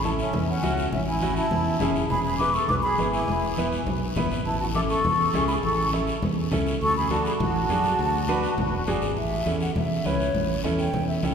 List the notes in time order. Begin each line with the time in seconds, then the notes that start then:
Already playing: A1
0.04 C#4 E4 A4 A5, high conga, short guiro
0.19 C#4 E5, short guiro
0.33 E2, high conga, low conga, long guiro
0.49 C#4 F#5
0.63 C#2 C#4 E4 F#4, high conga, short guiro
0.78 short guiro
0.92 A1 C#4 E5, high conga, low conga, long guiro
1.07 E4 G#5
1.22 C#4 E4 F#4, high conga, short guiro
1.36 E4 A5, short guiro
1.51 E2, high conga, low conga, long guiro
1.80 F#1 C#4 E4 G#4, high conga, low conga, short guiro
1.95 short guiro
2.10 E1 G#4 B5, high conga, low conga, long guiro
2.24 G#4 B5
2.38 B3 E4 G#4 B4 D6, high conga, short guiro
2.54 A4 C#6, short guiro
2.68 B1 B4 D6, high conga, low conga, long guiro
2.83 G#4 B5
2.98 G#1 B3 E4 G#4, high conga, short guiro
3.12 E4 G#5, short guiro
3.28 E1, high conga, low conga, long guiro
3.57 B3 E4 B4, high conga, short guiro
3.72 short guiro
3.86 B1, high conga, low conga, long guiro
4.16 F#1 B3 E4 B4, high conga, low conga, short guiro
4.31 G#1, short guiro
4.45 A1 E4 A5, high conga, long guiro
4.59 F#4 A5
4.74 C#4 E4 A4 D6, high conga, short guiro
4.89 A4 C#6, short guiro
5.04 E2, high conga, low conga, long guiro
5.34 C#2 C#4 E4 G#4, high conga, short guiro
5.48 G#4 B5, short guiro
5.63 A1 A4 C#6, high conga, long guiro
5.93 C#4 E4 A4, high conga, short guiro
6.07 short guiro
6.22 E2, high conga, low conga, long guiro
6.51 C#2 C#4 E4 A4, high conga, low conga, short guiro
6.66 short guiro
6.81 D2 A4 C#6, high conga, long guiro
6.97 G#4 B5
7.10 D4 F#4 A4 A5, high conga, short guiro
7.25 G#4 B5, short guiro
7.40 A1 F#4 A5, high conga, low conga, long guiro
7.69 F#2 D4 F#4 G#4, high conga, short guiro
7.84 short guiro
7.99 D2, high conga, long guiro
8.28 D4 F#4 B4, high conga, short guiro
8.43 short guiro
8.58 A1, high conga, low conga, long guiro
8.72 E1
8.87 F#1 D4 F#4 G#4, high conga, short guiro
9.02 G#1, short guiro
9.16 A1 E5, high conga, long guiro
9.46 E2 C#4 E4 A4, high conga, short guiro
9.61 F#5, short guiro
9.75 E2 E5, high conga, low conga, long guiro
10.05 C#2 C#4 E4 B4 C#5, high conga, short guiro
10.20 short guiro
10.35 A1, high conga, low conga, long guiro
10.64 E2 C#4 E4 A4, high conga, short guiro
10.79 G5, short guiro
10.93 E2, high conga, low conga, long guiro
11.08 E5
11.23 C#2 C#4 E4 A4 G5, high conga, short guiro